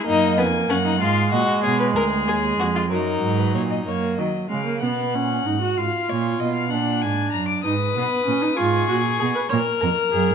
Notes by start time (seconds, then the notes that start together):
0.06 F#2 A#3 D#4 D#5
0.38 F2 B3 G#5
0.70 F#2 C#4 F#5
0.85 D#4
1.00 G#2 G#3 F4 F5
1.31 A#2 F#4 D#5
1.63 B2 G#4 C#5
1.80 B4
1.94 D2 G#4 A#4
2.26 D#2 G#4
2.59 F2 F#4
2.76 F4
2.90 F#2 F#3 D#4 A#4
3.23 G#2
3.38 B4
3.55 A#2 C#5
3.70 D#5
3.86 F#2 A#3 C#5
4.17 D#3 F#3 D#5
4.50 C#3 G#3 F5
4.66 A#3
4.82 B2 B3 F#5
5.14 A#2 C#4
5.46 G#2 D#4
5.61 F#4
5.76 G#2 F4 F5
6.09 A#2 C#5
6.39 B2 D#5
6.54 F5
6.70 A#2 D4 F#5
7.01 G#2 G#5
7.32 F#2 A#5
7.48 D6
7.64 G#2 D#4 B4 D#6
7.95 B2 B3
8.26 A#2 C#4
8.42 D#4
8.56 G#2 F4 G#4 C#6
8.88 A#2 F#4
9.19 B2 G#4
9.34 B4
9.49 A#2 A#4 C#5 F6
9.80 F2 A#4
10.11 F#2 G#4
10.30 G#2